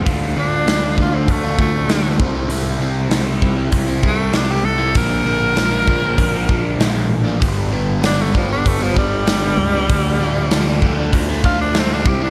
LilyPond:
<<
  \new Staff \with { instrumentName = "Tenor saxophone" } { \time 4/4 \key d \minor \tempo 4 = 97 r8 d'4 f'16 c'16 a8 a4 r8 | r2 r8 a8 d'16 g'16 a'8 | bes'2. r4 | r4 d'16 a16 f16 d'16 a16 f16 g4.~ |
g4. r4 f'16 d'16 c'16 d'16 g'16 d'16 | }
  \new Staff \with { instrumentName = "Overdriven electric guitar" } { \time 4/4 \key d \minor <d a d' f'>8 <d a d' f'>8 <d a d' f'>16 <a d' f'>16 <d a d' f'>16 <a d' f'>8 <a d' f'>16 <d a d' f'>8 <d a d' f'>16 <a d' f'>16 <c g c' e'>16 <g c' e'>16 | <c g c' e'>8 <c g c' e'>8 <c g c' e'>16 <g c' e'>16 <c g c' e'>16 <g c' e'>8 <g c' e'>16 <c g c' e'>8 <c g c' e'>16 <g c' e'>8 <g c' e'>16 | <bes, d f bes d'>8 <d f bes d'>8 <bes, d f bes d'>16 <f bes d'>16 <d f bes d'>16 <f bes d'>8 <f bes d'>16 <d f bes d'>8 <bes, d f bes d'>16 <f bes d'>8 <f bes d'>16 | <g, d g b d'>8 <d g b d'>8 <g, d g b d'>16 <g b d'>16 <d g b d'>16 <g b d'>8 <g b d'>16 <d g b d'>8 <g, d g b d'>16 <g b d'>8 <g b d'>16 |
<d f a d'>8 <d f a d'>8 <d f a d'>16 <f a d'>16 <d f a d'>16 <f a d'>8 <f a d'>16 <d f a d'>8 <d f a d'>16 <f a d'>16 <c g c' e'>16 <g c' e'>16 | }
  \new Staff \with { instrumentName = "Picked electric bass" } { \clef bass \time 4/4 \key d \minor d,8 d,8 d,8 d,8 d,8 d,8 d,8 c,8 | c,8 c,8 c,4 c,8 c,8 c,8 c,8 | bes,,8 bes,,8 bes,,8 bes,,8 bes,,8 bes,,8 bes,,8 a,,8 | g,,8 g,,8 g,,4 g,,8 g,,8 g,,8 cis,8 |
d,8 d,8 d,8 d,8 d,8 d,8 d,8 c,8 | }
  \new DrumStaff \with { instrumentName = "Drums" } \drummode { \time 4/4 <hho bd>4 <hho sn>8 bd8 <hho bd>8 bd8 <hho sn>8 bd8 | hho4 <hho sn>8 bd8 <hho bd>8 bd8 <hho sn>4 | <hho bd>4 <hho sn>8 bd8 <hho bd>8 bd8 <hho sn>4 | <hho bd>4 <hho sn>8 bd8 <hho bd>8 bd8 <hho sn>4 |
<hho bd>4 <hho sn>8 bd8 <hho bd>8 bd8 <hho sn>8 bd8 | }
>>